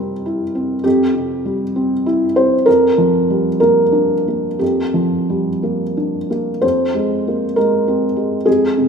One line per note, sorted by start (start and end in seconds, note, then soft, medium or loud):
0.00 0.81 F2 medium
0.00 0.87 C3 soft
0.00 0.13 G3 soft
0.00 0.43 C4 soft
0.00 0.84 A#4 medium
0.26 0.73 E4 soft
0.55 1.03 C4 soft
0.84 2.63 F2 soft
0.84 2.05 G4 medium
1.15 1.63 C3 soft
1.45 1.93 G3 soft
1.76 2.24 C4 soft
2.06 2.55 E4 soft
2.36 2.68 C4 soft
2.36 2.67 C5 medium
2.66 4.57 F2 soft
2.66 3.59 A#4 medium
2.98 3.49 F3 soft
3.30 3.81 G3 soft
3.60 4.14 A#3 soft
3.60 4.60 A#4 medium
3.92 4.46 D4 soft
4.28 4.82 A#3 soft
4.59 6.58 F2 soft
4.59 6.29 G4 medium
4.94 5.49 F3 soft
5.29 5.83 G3 soft
5.63 6.17 A#3 soft
5.97 6.50 D4 soft
6.30 6.63 A#3 soft
6.61 8.43 F2 soft
6.61 7.55 C5 medium
6.94 7.44 G#3 soft
7.27 7.57 A#3 soft
7.56 8.05 G#3 soft
7.56 8.47 A#4 medium
7.88 8.35 C4 soft
8.16 8.65 G#3 soft
8.46 8.88 F2 soft
8.46 8.88 G#4 medium
8.78 8.88 C3 soft